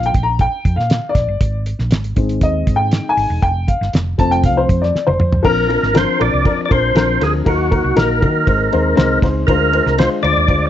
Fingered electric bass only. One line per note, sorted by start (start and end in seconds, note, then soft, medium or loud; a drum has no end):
0.00 0.10 A#1 medium
0.15 0.46 A#1 loud
0.65 0.76 F2 medium
0.77 0.98 A#2 medium
1.15 1.26 A#1 medium
1.28 1.39 G1 medium
1.41 1.72 G#1 loud
1.79 1.90 A#1 medium
1.91 2.12 G#1 medium
2.17 2.38 G#1 medium
2.41 2.63 D#2 loud
2.67 2.98 G#2 loud
3.17 3.28 G#1 medium
3.30 3.40 E1 medium
3.43 3.74 F1 loud
3.81 3.91 G1 medium
3.93 4.14 F1 medium
4.18 4.45 F1 medium
4.43 4.64 C2 medium
4.69 4.90 F2 loud
4.96 muted fingered electric bass stroke soft
5.08 5.18 F1 medium
5.21 5.41 F2 loud
5.45 5.76 A#1 loud
5.83 6.04 G#1 medium
6.21 6.31 A#1 loud
6.33 6.44 C2 medium
6.58 muted fingered electric bass stroke soft
6.71 6.92 A#1 medium
6.95 7.16 A#1 loud
7.21 7.42 D2 medium
7.47 7.78 D#2 loud
7.84 7.94 C2 medium
7.96 8.24 A#1 medium
8.23 8.43 D#3 loud
8.48 8.68 G#1 loud
8.74 8.94 D#2 medium
8.98 9.19 C2 medium
9.23 9.43 C#2 medium
9.48 9.79 D2 loud
9.86 10.06 C2 medium
10.23 10.34 D2 loud
10.37 10.47 D#2 medium
10.49 10.69 D2 loud